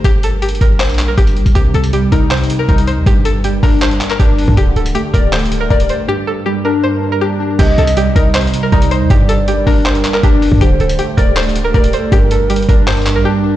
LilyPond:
<<
  \new Staff \with { instrumentName = "Soft synth lead" } { \time 4/4 \key g \minor \tempo 4 = 159 r1 | r1 | r1 | r1 |
r1 | ees''2 r4 d''8 c''8 | d''2 bes'4 r4 | c''2 r4 bes'8 a'8 |
bes'2 r2 | }
  \new Staff \with { instrumentName = "Synth pluck" } { \time 4/4 \key g \minor g'8 a'8 g'8 bes'8 c''8. bes'16 g'4 | g'8 a'8 g'8 bes'8 c''8. bes'16 bes'8 c''8 | g'8 a'8 g'8 bes'8 c''8. bes'16 g'4 | g'8 a'8 g'8 bes'8 c''8. bes'16 bes'8 c''8 |
g'8 a'8 g'8 bes'8 c''8. bes'16 g'4 | g'8 a'8 g'8 bes'8 c''8. bes'16 bes'8 c''8 | g'8 a'8 g'8 bes'8 c''8. bes'16 g'4 | g'8 a'8 g'8 bes'8 c''8. bes'16 bes'8 c''8 |
g'8 a'8 g'8 bes'8 c''8. bes'16 g'4 | }
  \new Staff \with { instrumentName = "Analog synth pad" } { \time 4/4 \key g \minor <g d' bes'>1 | <c ees'>1 | <d' bes'>1 | <d a g'>1 |
<g d' bes'>1 | <c g ees'>1 | <d' bes'>1 | <d a g'>1 |
<g d' bes'>1 | }
  \new Staff \with { instrumentName = "Synth keys" } { \clef bass \time 4/4 \key g \minor r1 | c8 c8 g8 ees'8 c8 c8 ees'8 ees'8 | g,8 g,8 g8 d'8 g,8 g,8 d'8 d'8 | d8 d8 a8 d''8 d8 d8 d''8 d''8 |
g,8 g,8 g8 d'8 g,8 g,8 d'8 d'8 | c8 c8 g8 ees'8 c8 c8 ees'8 ees'8 | g,8 g,8 g8 d'8 g,8 g,8 d'8 d'8 | d8 d8 a8 d''8 d8 d8 d''8 d''8 |
g,8 g,8 g8 d'8 g,8 g,8 d'8 d'8 | }
  \new Staff \with { instrumentName = "808-style bass" } { \clef bass \time 4/4 \key g \minor g,,4. g,,8. bes,,8. g,,8. g,,16 | c,8 c,4 c,4 r8 c,8. ees,16 | g,,4. g,,4 r8 g,,8 fis,,16 g,16 | d,,8 d,,8 r8 d,,4. d,,8 r8 |
r1 | c,8 c,4 c,4 r8 c,8. ees,16 | g,,4. g,,4 r8 g,,8 fis,,16 g,16 | d,,8 d,,8 r8 d,,4. d,,8 r8 |
g,,4. g,,4~ g,,16 bes,,16 r4 | }
  \new DrumStaff \with { instrumentName = "Drums" } \drummode { \time 4/4 <hh bd>8 hh8 \tuplet 3/2 { hh16 hh16 hh16 <hh bd>16 r16 r16 } <hc hh>32 hh32 hh32 hh32 <hc hh>8 <hh bd>16 hh16 hh16 <hh bd>16 | <hh bd>8 hh16 hh16 hh8 <hh bd>8 \tuplet 3/2 { <hc hh>16 hh16 hh16 hh16 r16 r16 } <hh bd>16 hh16 hh8 | <hh bd>8 hh8 hh8 <hho bd>8 <hc hh>16 hh16 <hc hh>16 hc16 <hh bd>8 hho16 bd16 | <hh bd>8 hh16 hh16 hh8 <hh bd>8 \tuplet 3/2 { <hc hh>16 hh16 hh16 hh16 r16 r16 } <hh bd>16 hh16 hh8 |
r4 r4 r4 r4 | <cymc hh bd>8 hh16 hh16 hh8 <hh bd>8 \tuplet 3/2 { <hc hh>16 hh16 hh16 hh16 r16 r16 } <hh bd>16 hh16 hh8 | <hh bd>8 hh8 hh8 <hho bd>8 <hc hh>16 hh16 <hc hh>16 hc16 <hh bd>8 hho16 bd16 | <hh bd>8 hh16 hh16 hh8 <hh bd>8 \tuplet 3/2 { <hc hh>16 hh16 hh16 hh16 r16 r16 } <hh bd>16 hh16 hh8 |
<hh bd>8 hh8 \tuplet 3/2 { hh16 hh16 hh16 <hh bd>16 r16 r16 } <hc hh>32 hh32 hh32 hh32 <hc hh>8 r4 | }
>>